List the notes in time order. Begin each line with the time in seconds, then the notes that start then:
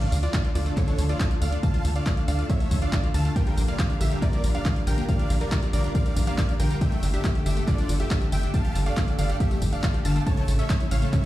Already playing: D5 F5, sub drop
0.01 A3, closed hi-hat
0.12 D2 D3, open hi-hat, tambourine
0.23 D3 A3 D4 F4 A4 D5, closed hi-hat, tambourine
0.34 D3, kick, clap, closed hi-hat, tambourine
0.44 D3 A3 F4 A4, closed hi-hat
0.55 D2 D3 A3 F4 A4 D5, open hi-hat, tambourine
0.66 D3 A3 F4 A4, closed hi-hat, tambourine
0.77 D3 A4 C#5, kick, clap, closed hi-hat, tambourine
0.88 D4, closed hi-hat, tambourine
0.98 D2 D3 A3 F4 A4, open hi-hat, tambourine
1.09 F4 D5, closed hi-hat, tambourine
1.20 D3, kick, clap, closed hi-hat, tambourine
1.31 D3 A3 F4 A4, closed hi-hat
1.41 D2 D3 D5 F5, open hi-hat, tambourine
1.52 D3 A3 D4 F4 A4, closed hi-hat, tambourine
1.63 D3 A3 F4 A4 F5 A5, kick, closed hi-hat, tambourine
1.74 F4, closed hi-hat
1.85 D2 D3, open hi-hat, tambourine
1.95 D3 A3 F4 A4 D5 F5, closed hi-hat, tambourine
2.06 D3, kick, clap, closed hi-hat, tambourine
2.17 D3 A3 D4 F4 A4, closed hi-hat
2.28 D2 D3 A3 F4 A4 D5 F5, open hi-hat, tambourine
2.39 D3 A3 F4 A4, closed hi-hat, tambourine
2.50 D3 C#5 E5, kick, closed hi-hat, tambourine
2.60 A3, closed hi-hat, tambourine
2.71 D2 D3 A3 F4 A4, kick, open hi-hat, tambourine
2.82 D4 D5 F5, closed hi-hat, tambourine
2.93 D3, kick, clap, closed hi-hat, tambourine
3.04 D3 A3 F4 A4, closed hi-hat
3.14 D2 D3 F5 A5, open hi-hat, tambourine
3.25 D3 A3 F4 A4, closed hi-hat, tambourine
3.36 D3 G3 F4 A#4 G5, kick, closed hi-hat, tambourine
3.47 G3, closed hi-hat
3.57 A#1 D3, open hi-hat, tambourine
3.68 D3 G3 A#3 F4 A#4 D5 F5, closed hi-hat, tambourine
3.79 D3, kick, clap, closed hi-hat, tambourine
3.90 D3 G3 D4 F4 A#4, closed hi-hat
4.01 A#1 D3 G3 F4 G4 A#4 E5, open hi-hat, tambourine
4.11 D3 G3 F4 A#4, closed hi-hat, tambourine
4.22 D3 A#4 D5, kick, clap, closed hi-hat, tambourine
4.33 A#3, closed hi-hat, tambourine
4.44 A#1 D3 G3 F4 A#4, open hi-hat, tambourine
4.55 D4 D5 F5, closed hi-hat, tambourine
4.65 D3, kick, clap, closed hi-hat, tambourine
4.76 D3 G3 F4 A#4, closed hi-hat
4.87 A#1 D3 A#4 G5, open hi-hat, tambourine
4.98 D3 G3 A#3 F4 A#4, closed hi-hat, tambourine
5.08 D3 G3 F4 A#4 D5 F5, kick, closed hi-hat, tambourine
5.19 D4, closed hi-hat
5.30 A#1 D3, open hi-hat, tambourine
5.41 D3 G3 F4 A#4 D5, closed hi-hat, tambourine
5.52 D3, kick, clap, closed hi-hat, tambourine
5.63 D3 G3 A#3 F4 A#4, closed hi-hat, tambourine
5.73 A#1 D3 G3 F4 A#4 D5, open hi-hat, tambourine
5.84 D3 G3 D4 F4 A#4, closed hi-hat, tambourine
5.95 D3 D5 F5, kick, closed hi-hat, tambourine
6.06 G3, closed hi-hat, tambourine
6.16 A#1 D3 G3 F4 A#4, kick, open hi-hat, tambourine
6.27 A#3 D5 F5, closed hi-hat, tambourine
6.38 D3, kick, clap, closed hi-hat, tambourine
6.49 D3 G3 D4 F4 A#4, closed hi-hat
6.60 A#1 D3 A#4 G5, open hi-hat, tambourine
6.70 D3 G3 F4 A#4, closed hi-hat, tambourine
6.81 D3 A3 G4 A4 E5 G5, kick, closed hi-hat, tambourine
6.92 A3, closed hi-hat
7.03 G1 D3, open hi-hat, tambourine
7.14 D3 A3 D4 G4 A4 E5, closed hi-hat, tambourine
7.24 D3, kick, clap, closed hi-hat, tambourine
7.35 D3 A3 G4 A4, closed hi-hat
7.46 G1 D3 A3 G4 A4 E5, open hi-hat, tambourine
7.57 D3 A3 G4 A4, closed hi-hat, tambourine
7.68 D3 F4 D5, kick, clap, closed hi-hat, tambourine
7.78 D4, closed hi-hat, tambourine
7.89 G1 D3 A3 G4 A4, open hi-hat, tambourine
8.00 G4 E5, closed hi-hat, tambourine
8.11 D3, kick, clap, closed hi-hat, tambourine
8.21 D3 A3 G4 A4, closed hi-hat
8.32 G1 D3 E5 G5, open hi-hat, tambourine
8.43 D3 A3 D4 G4 A4, closed hi-hat, tambourine
8.54 D3 A3 G4 A4 F5 A5, kick, closed hi-hat, tambourine
8.65 G4, closed hi-hat
8.75 G1 D3, open hi-hat, tambourine
8.86 D3 A3 G4 A4 D5 F5, closed hi-hat, tambourine
8.97 D3, kick, clap, closed hi-hat, tambourine
9.08 D3 A3 D4 G4 A4, closed hi-hat
9.19 G1 D3 A3 G4 A4 D5 F5, open hi-hat, tambourine
9.29 D3 A3 G4 A4, closed hi-hat, tambourine
9.40 D3 G4 E5, kick, closed hi-hat, tambourine
9.51 A3, closed hi-hat, tambourine
9.62 G1 D3 A3 G4 A4, kick, open hi-hat, tambourine
9.73 D4 D5 F5, closed hi-hat, tambourine
9.83 D3, kick, clap, closed hi-hat, tambourine
9.94 D3 A3 G4 A4, closed hi-hat
10.05 G1 D3 F5 A5, open hi-hat, tambourine
10.16 D3 A3 G4 A4, closed hi-hat, tambourine
10.26 C#3 A3 E4 A4 C#5 A5, kick, closed hi-hat, tambourine
10.37 A3, closed hi-hat
10.48 A1 C#3, open hi-hat, tambourine
10.59 C#3 A3 C#4 E4 A4 C#5 E5, closed hi-hat, tambourine
10.70 C#3, kick, clap, closed hi-hat, tambourine
10.80 C#3 A3 E4 A4, closed hi-hat
10.91 A1 C#3 A3 E4 A4 C#5 F5, open hi-hat, tambourine
11.02 C#3 A3 E4 A4, closed hi-hat, tambourine
11.13 C#3 C#5 E5, kick, clap, closed hi-hat, tambourine